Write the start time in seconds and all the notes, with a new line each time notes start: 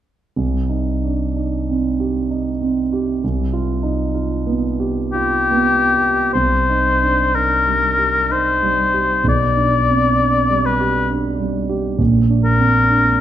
0.36 C2
0.69 D#4
1.04 D4
1.36 D#4
1.70 C4
2.00 G4
2.31 D#4
2.61 C4
2.93 G4
3.24 C2
3.53 F4
3.83 D#4
4.14 F4
4.46 B3
4.80 G4
5.12 F4 G4
5.51 B3
5.94 G4
6.33 C2 C5
6.69 D#4
7.02 D4
7.34 D#4 A#4
7.66 G3
7.98 G4
8.29 D#4 C5
8.62 G3
8.93 G4
9.24 B1
9.28 D5
9.56 D4
9.90 C4
10.20 D4
10.50 G3
10.66 B4
10.80 G4
11.10 D4
11.39 G3
11.69 G4
11.99 A#1
12.30 D4
12.44 A#4
12.58 C4
12.90 D4